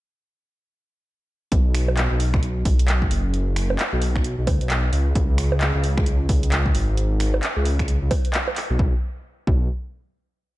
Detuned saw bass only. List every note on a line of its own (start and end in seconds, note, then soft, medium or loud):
1.52 2.08 B1 medium
2.11 2.63 B1 medium
2.65 3.09 B1 medium
3.11 3.77 F#1 medium
3.93 4.35 B1 medium
4.38 4.49 B1 medium
4.47 4.59 D2 medium
4.61 4.91 B1 medium
4.93 5.13 C#2 loud
5.15 5.72 C#2 medium
5.75 6.27 C#2 medium
6.29 6.73 C#2 medium
6.74 7.41 G#1 loud
7.57 7.99 C#2 medium
8.02 8.10 C#2 medium
8.70 8.78 B1 medium
8.79 8.94 B1 medium
9.47 9.68 B1 medium